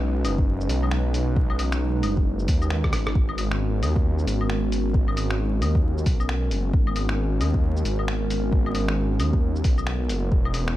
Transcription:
0.00 0.26 B1 loud
0.00 10.28 G#3 medium
0.00 3.12 C#4 medium
0.00 3.12 D#4 medium
0.00 10.28 F#4 medium
0.00 3.11 B4 medium
0.24 0.68 F#1 medium
0.24 open hi-hat medium
0.24 claves medium
0.24 shaker medium
0.38 kick loud
0.61 shaker soft
0.69 2.04 B1 loud
0.69 open hi-hat medium
0.69 shaker medium
0.83 claves medium
0.91 finger snap loud
1.14 open hi-hat medium
1.14 shaker medium
1.36 kick loud
1.50 claves medium
1.59 open hi-hat medium
1.59 claves medium
1.59 shaker medium
1.72 finger snap loud
1.72 shaker soft
2.02 2.46 F#1 medium
2.02 open hi-hat medium
2.02 claves medium
2.02 shaker medium
2.17 kick loud
2.39 shaker soft
2.48 2.93 D#2 loud
2.48 kick loud
2.48 open hi-hat medium
2.48 shaker medium
2.62 claves medium
2.62 shaker soft
2.70 finger snap loud
2.84 kick medium
2.84 cross-stick medium
2.92 3.13 G#1 medium
2.92 cross-stick medium
2.92 open hi-hat medium
2.92 shaker medium
3.07 cross-stick medium
3.15 3.83 G#1 loud
3.15 10.77 B3 medium
3.15 10.28 C#4 medium
3.15 10.28 A#4 medium
3.15 kick loud
3.29 claves medium
3.38 open hi-hat medium
3.38 claves medium
3.38 shaker medium
3.51 finger snap loud
3.81 4.25 D#2 medium
3.81 open hi-hat medium
3.81 claves medium
3.81 shaker medium
3.96 kick loud
4.19 shaker soft
4.26 5.62 G#1 loud
4.26 open hi-hat medium
4.26 shaker medium
4.41 claves medium
4.50 finger snap loud
4.72 open hi-hat medium
4.72 shaker medium
4.94 kick loud
5.08 claves medium
5.17 open hi-hat medium
5.17 claves medium
5.17 shaker medium
5.30 finger snap loud
5.61 6.05 D#2 medium
5.61 open hi-hat medium
5.61 claves medium
5.61 shaker medium
5.75 kick loud
5.98 shaker soft
6.06 6.51 B1 loud
6.06 kick loud
6.06 open hi-hat medium
6.06 shaker medium
6.20 claves medium
6.20 shaker soft
6.29 finger snap loud
6.50 6.71 F#1 medium
6.50 open hi-hat medium
6.50 shaker medium
6.73 7.41 G#1 loud
6.73 kick loud
6.87 claves medium
6.96 open hi-hat medium
6.96 claves medium
6.96 shaker medium
7.09 finger snap loud
7.39 7.84 D#2 medium
7.39 open hi-hat medium
7.39 claves medium
7.39 shaker medium
7.54 kick loud
7.77 shaker soft
7.84 9.20 G#1 medium
7.84 open hi-hat medium
7.84 shaker medium
7.99 claves medium
8.08 finger snap loud
8.30 open hi-hat medium
8.30 shaker medium
8.53 kick loud
8.66 claves medium
8.75 open hi-hat medium
8.75 claves medium
8.75 shaker medium
8.88 finger snap loud
9.19 9.63 D#2 medium
9.19 open hi-hat medium
9.19 claves medium
9.19 shaker medium
9.33 kick loud
9.56 shaker soft
9.64 10.10 B1 loud
9.64 kick loud
9.64 open hi-hat medium
9.64 shaker medium
9.78 claves medium
9.78 shaker soft
9.87 finger snap loud
10.09 10.30 F#1 medium
10.09 open hi-hat medium
10.09 shaker medium
10.31 10.77 E1 loud
10.31 10.77 G#3 medium
10.31 10.77 C#4 medium
10.31 10.77 E4 medium
10.31 10.77 B4 medium
10.31 kick loud
10.45 claves medium
10.54 open hi-hat medium
10.54 claves medium
10.54 shaker medium
10.68 finger snap loud

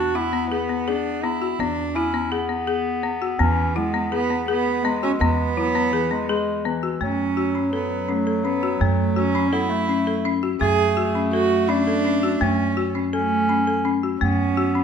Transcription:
0.00 1.56 E2 medium
0.00 0.17 D4 medium
0.00 0.17 F#4 medium
0.15 1.69 B3 medium
0.15 0.30 E4 medium
0.15 0.51 E4 medium
0.33 0.48 B3 medium
0.51 0.90 B3 medium
0.51 0.66 G#4 medium
0.69 0.84 B3 medium
0.88 1.25 D4 medium
0.88 1.17 G#4 medium
1.24 1.38 B3 medium
1.24 1.61 E4 medium
1.42 1.56 F#4 medium
1.59 3.36 E2 medium
1.59 1.90 B3 medium
1.59 1.97 D4 medium
1.95 2.33 C#4 medium
1.95 2.32 E4 medium
1.95 2.11 E4 medium
2.14 2.29 B3 medium
2.31 3.41 B3 medium
2.31 2.47 G#4 medium
2.49 2.64 B3 medium
2.67 2.97 G#4 medium
3.03 3.18 B3 medium
3.22 3.37 F#4 medium
3.39 5.17 E2 medium
3.39 3.78 E3 medium
3.39 3.69 B3 medium
3.39 3.75 C#4 medium
3.76 4.13 G#3 medium
3.76 4.85 B3 medium
3.76 3.91 E4 medium
3.94 4.09 B3 medium
4.12 4.47 B3 medium
4.12 4.27 G#4 medium
4.30 4.45 B3 medium
4.48 4.99 B3 medium
4.48 4.78 G#4 medium
4.84 5.56 G#3 medium
4.84 5.00 B3 medium
5.03 5.11 C#4 loud
5.03 5.18 F#4 medium
5.21 6.98 E2 medium
5.21 6.61 B3 loud
5.21 5.51 B3 medium
5.56 5.95 F#3 medium
5.56 5.72 E4 medium
5.75 5.90 B3 medium
5.93 6.13 E3 medium
5.93 6.08 G#4 medium
6.11 6.28 G#3 medium
6.11 6.26 B3 medium
6.28 6.67 G#3 medium
6.28 6.59 G#4 medium
6.65 7.01 E3 medium
6.65 6.80 B3 medium
6.83 6.98 F#4 medium
7.01 8.78 F#2 medium
7.01 9.50 F#3 medium
7.01 7.31 A3 medium
7.01 7.70 C#4 medium
7.37 7.52 F#4 medium
7.55 7.70 C#4 medium
7.73 8.11 B3 medium
7.73 8.03 A4 medium
8.09 8.47 A3 medium
8.09 8.24 C#4 medium
8.27 8.42 A4 medium
8.45 8.82 B3 medium
8.45 8.60 C#4 medium
8.63 8.78 F#4 medium
8.81 10.57 F#2 medium
8.81 9.19 A3 medium
8.81 9.11 A3 medium
9.16 9.54 C#4 medium
9.16 9.32 F#4 medium
9.35 9.50 C#4 medium
9.48 9.54 C#4 medium
9.52 9.72 B3 medium
9.52 10.25 E4 medium
9.52 9.82 A4 medium
9.70 10.44 A3 medium
9.89 10.04 C#4 medium
10.07 10.22 A4 medium
10.25 10.40 C#4 medium
10.43 10.58 F#4 medium
10.61 12.38 F#2 medium
10.61 12.82 A3 loud
10.61 10.91 A3 loud
10.61 11.11 G#4 loud
10.97 11.12 F#4 medium
11.15 11.30 C#4 medium
11.33 11.71 F#4 medium
11.33 11.63 A4 medium
11.69 11.84 C#4 medium
11.69 12.44 D4 loud
11.87 12.02 A4 medium
12.05 12.20 C#4 medium
12.23 12.38 F#4 medium
12.41 14.18 F#2 medium
12.41 12.71 A3 loud
12.41 12.96 C#4 medium
12.77 12.92 F#4 medium
12.95 13.10 C#4 medium
13.13 13.82 A3 medium
13.13 13.99 C#4 loud
13.13 13.43 A4 medium
13.49 13.64 C#4 medium
13.67 13.82 A4 medium
13.85 14.00 C#4 medium
14.03 14.18 F#4 medium
14.21 14.84 F#2 medium
14.21 14.51 A3 medium
14.21 14.84 B3 loud
14.21 14.84 C#4 medium
14.57 14.72 F#4 medium
14.75 14.84 C#4 medium

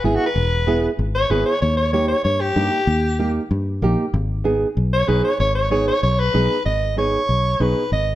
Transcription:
0.04 0.17 G#1 medium
0.04 0.26 B3 medium
0.04 0.27 E4 medium
0.04 0.17 G#4 medium
0.04 0.27 G#4 medium
0.16 0.26 F#4 medium
0.26 0.87 B4 medium
0.36 0.86 E1 loud
0.67 0.89 B3 medium
0.67 0.90 E4 medium
0.67 0.90 G#4 medium
0.99 1.24 G#1 medium
1.15 1.32 C#5 loud
1.30 1.43 G#1 medium
1.30 1.52 B3 medium
1.30 1.53 E4 medium
1.30 1.53 G#4 medium
1.30 1.45 B4 medium
1.46 1.61 C#5 medium
1.62 2.12 D#2 loud
1.62 1.76 C#5 medium
1.77 1.93 C#5 medium
1.93 2.15 A#3 medium
1.93 2.15 D#4 medium
1.93 2.16 G4 medium
1.93 2.08 C#5 medium
2.08 2.24 C#5 medium
2.24 2.50 G2 medium
2.24 2.42 C#5 medium
2.40 3.32 G4 loud
2.56 2.69 G2 medium
2.56 2.78 A#3 medium
2.56 2.78 D#4 medium
2.56 2.78 G4 medium
2.87 3.38 D#2 loud
3.19 3.41 A#3 medium
3.19 3.42 D#4 medium
3.19 3.42 G4 loud
3.51 3.84 G2 loud
3.82 3.95 A#1 medium
3.82 4.04 A#3 medium
3.82 4.05 D#4 medium
3.82 4.05 G4 loud
4.14 4.64 G#1 loud
4.44 4.67 B3 medium
4.44 4.67 D#4 medium
4.44 4.67 G#4 medium
4.77 5.02 B1 medium
4.93 5.10 C#5 loud
5.07 5.21 B1 medium
5.07 5.30 B3 medium
5.07 5.30 D#4 medium
5.07 5.30 G#4 medium
5.07 5.23 B4 medium
5.24 5.39 C#5 medium
5.40 5.90 G#1 loud
5.40 5.54 C#5 medium
5.55 5.71 C#5 loud
5.71 5.93 B3 medium
5.71 5.93 D#4 medium
5.71 5.94 G#4 medium
5.71 5.87 C#5 medium
5.87 6.02 C#5 loud
6.03 6.28 B1 medium
6.03 6.21 C#5 medium
6.19 6.65 B4 loud
6.34 6.47 B1 medium
6.34 6.56 B3 medium
6.34 6.57 D#4 medium
6.34 6.57 G#4 medium
6.65 7.16 G#1 loud
6.65 6.95 D#5 medium
6.97 7.19 B3 medium
6.97 7.20 D#4 medium
6.97 7.20 G#4 medium
6.97 7.63 C#5 medium
7.29 7.54 B1 medium
7.60 7.73 B1 medium
7.60 7.82 B3 medium
7.60 7.83 D#4 medium
7.60 7.83 G#4 medium
7.60 7.92 B4 medium
7.92 8.15 G#1 loud
7.92 8.15 D#5 medium

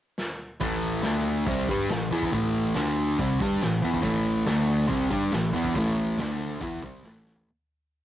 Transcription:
0.18 snare medium
0.60 1.01 A1 loud
0.60 1.03 A2 loud
0.60 1.03 E3 loud
0.60 1.03 A3 loud
0.60 kick loud
0.60 open hi-hat medium
1.03 1.44 D2 loud
1.03 1.46 D3 medium
1.03 1.46 A3 loud
1.03 1.47 D4 loud
1.03 snare loud
1.03 open hi-hat medium
1.46 1.66 C2 loud
1.46 1.67 C3 medium
1.46 1.68 G3 loud
1.46 1.68 C4 loud
1.46 kick loud
1.46 open hi-hat medium
1.68 1.88 G2 medium
1.68 1.89 G3 medium
1.68 1.90 D4 loud
1.68 1.90 G4 loud
1.68 kick medium
1.89 2.09 A1 medium
1.89 2.07 A2 medium
1.89 2.07 E3 medium
1.89 snare loud
1.89 open hi-hat medium
2.11 2.31 E2 medium
2.11 2.31 E3 medium
2.11 2.32 B3 medium
2.11 2.33 E4 loud
2.23 kick medium
2.32 2.72 A1 medium
2.32 2.75 A2 loud
2.32 2.75 E3 loud
2.32 2.76 A3 loud
2.32 kick medium
2.32 open hi-hat medium
2.75 3.16 D2 loud
2.75 3.18 D3 medium
2.75 3.19 A3 loud
2.75 3.19 D4 loud
2.75 snare loud
2.75 open hi-hat medium
3.18 3.39 C2 loud
3.18 3.40 C3 medium
3.18 3.38 G3 medium
3.18 3.41 C4 loud
3.18 kick loud
3.18 open hi-hat medium
3.40 3.60 G2 loud
3.40 3.61 G3 medium
3.40 3.62 D4 loud
3.40 3.62 G4 loud
3.40 kick loud
3.62 3.82 A1 medium
3.62 3.79 A2 medium
3.62 3.79 E3 medium
3.62 snare loud
3.62 open hi-hat medium
3.82 4.03 E2 medium
3.82 4.02 E3 medium
3.82 4.03 B3 loud
3.82 4.04 E4 medium
3.94 kick medium
4.02 4.44 A1 medium
4.02 4.46 A2 loud
4.02 4.46 E3 loud
4.02 4.47 A3 loud
4.02 kick medium
4.02 open hi-hat medium
4.46 4.87 D2 loud
4.46 4.87 D3 medium
4.46 4.89 A3 loud
4.46 4.89 D4 loud
4.46 snare loud
4.46 open hi-hat medium
4.88 5.09 C2 loud
4.88 5.10 C3 medium
4.88 5.09 G3 loud
4.88 5.11 C4 loud
4.88 kick loud
4.88 open hi-hat medium
5.10 5.30 G2 medium
5.10 5.32 G3 loud
5.10 5.33 D4 loud
5.10 5.33 G4 loud
5.10 kick medium
5.31 5.52 A1 medium
5.31 5.50 A2 medium
5.31 5.50 E3 medium
5.31 snare loud
5.31 open hi-hat medium
5.53 5.74 E2 medium
5.53 5.75 E3 medium
5.53 5.76 B3 medium
5.53 5.76 E4 loud
5.64 kick medium
5.75 6.15 A1 loud
5.75 6.18 A2 loud
5.75 6.19 E3 loud
5.75 kick loud
5.75 open hi-hat medium
5.79 6.19 A3 loud
6.18 6.58 D2 loud
6.18 6.61 D3 medium
6.18 6.61 A3 loud
6.18 snare loud
6.18 open hi-hat medium
6.22 6.62 D4 loud
6.61 6.81 E2 medium
6.61 6.82 E3 medium
6.61 6.82 B3 medium
6.61 6.83 E4 loud
6.61 kick loud
6.61 open hi-hat medium
6.82 7.03 C3 loud
6.82 7.04 G3 loud
6.82 7.04 C4 loud
6.82 kick loud
7.03 7.43 A1 loud
7.03 7.47 A2 medium
7.03 7.47 E3 medium
7.03 snare loud
7.03 open hi-hat medium
7.07 7.47 A3 loud
7.25 snare medium
7.35 floor tom medium

